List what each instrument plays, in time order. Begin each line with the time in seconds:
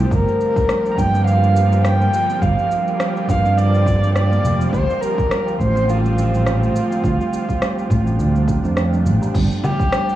Already playing: synth drone D3 F3
0.00 kalimba C4
0.11 fretless electric bass G1, synth drone G3 A#3 F4, kalimba G3, synth texture G4 G5, kamancheh A#4, kick, cabasa
0.28 cabasa
0.41 cabasa
0.56 kick, cabasa
0.69 kalimba G3, cross-stick, cabasa
0.86 cabasa
0.92 kamancheh A#5
0.98 fretless electric bass G2, kalimba A#3, kamancheh G5, kick, cabasa
1.14 kalimba C4, cabasa
1.27 kalimba C4, kamancheh F5, cabasa
1.43 kalimba G3, cabasa
1.56 cabasa
1.72 kalimba G3, cabasa
1.84 kalimba F4, kamancheh G5, cross-stick, cabasa
2.00 kalimba A#3, cabasa
2.13 cabasa
2.29 kalimba C4, cabasa
2.42 fretless electric bass G1, kalimba G3, kamancheh F5, kick, cabasa
2.59 cabasa
2.71 cabasa
2.88 cabasa
3.00 kalimba G3, cross-stick, cabasa
3.16 cabasa
3.29 fretless electric bass G2, kalimba A#3, kamancheh F5, kick, cabasa
3.45 kalimba C4, cabasa
3.58 kalimba C4, kamancheh D5, cabasa
3.74 kalimba G3, cabasa
3.86 kick, cabasa
4.03 kalimba G3, cabasa
4.15 kalimba F4, kamancheh D5, cross-stick, cabasa
4.32 kalimba A#3, cabasa
4.44 fretless electric bass F1, cabasa
4.61 kalimba C4, cabasa
4.73 fretless electric bass D2, kalimba G3, synth drone C4, kamancheh C5, kick, cabasa
4.90 cabasa
5.02 kamancheh A#4, cabasa
5.18 kick, cabasa
5.31 kalimba G3, cross-stick, cabasa
5.48 cabasa
5.60 fretless electric bass A1, kalimba A3, kamancheh C5, kick, cabasa
5.76 kalimba C4, cabasa
5.89 kalimba C4, kamancheh F4, cabasa
6.05 kalimba G3, cabasa
6.18 cabasa
6.34 kalimba G3, cabasa
6.46 kalimba F4, cross-stick, cabasa
6.63 kalimba A3, cabasa
6.76 cabasa
6.91 kalimba C4, cabasa
7.04 fretless electric bass D2, kalimba G3, synth drone D4, kick, cabasa
7.21 cabasa
7.33 cabasa
7.49 kick, cabasa
7.61 kalimba G3, cross-stick, cabasa
7.79 cabasa
7.90 fretless electric bass A1, kalimba A3, kick, cabasa
8.06 kalimba C4, cabasa
8.19 fretless electric bass D2, kalimba C4, cabasa
8.35 kalimba G3, cabasa
8.48 kalimba D4, kick, cabasa
8.64 fretless electric bass F2, kalimba D4, cabasa
8.76 kalimba D3, cross-stick, cabasa
8.93 kalimba G3, cabasa
9.06 fretless electric bass A1, cabasa
9.22 kalimba G4, cabasa
9.34 fretless electric bass G1, synth drone D3 F3 G3 A#3 F4, kalimba G3, kick, crash, cabasa
9.51 cabasa
9.64 kamancheh G4, low conga, cabasa
9.79 kick, cabasa
9.92 kalimba G3, cross-stick, cabasa
10.09 cabasa